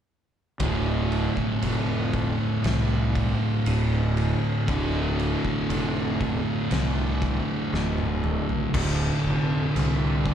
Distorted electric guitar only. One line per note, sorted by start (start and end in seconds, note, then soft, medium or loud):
0.60 4.65 D2 medium
0.60 4.66 A2 medium
0.60 4.66 D3 medium
4.67 8.70 D2 medium
4.67 8.71 A2 medium
4.67 8.71 D3 medium
8.73 10.34 D2 medium
8.73 10.34 A2 medium
8.73 10.34 D3 medium